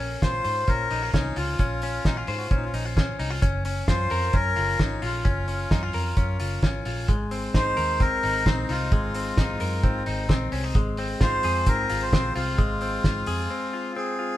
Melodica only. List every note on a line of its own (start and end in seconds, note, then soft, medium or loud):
0.23 0.70 C5 loud
0.69 1.11 A#4 loud
1.14 1.38 D#4 medium
1.37 2.34 F4 medium
2.38 2.47 F#4 medium
2.46 2.55 F4 medium
2.56 2.65 D#4 medium
2.65 2.74 F4 medium
3.88 4.35 C5 loud
4.35 4.82 A#4 loud
4.82 5.02 D#4 medium
5.05 6.37 F4 medium
7.55 8.02 C5 loud
8.01 8.48 A#4 loud
8.48 8.70 D#4 medium
8.70 10.03 F4 medium
11.22 11.69 C5 loud
11.68 12.03 A#4 loud
12.02 12.34 C5 medium
12.35 13.92 F4 medium
13.96 14.37 G#4 medium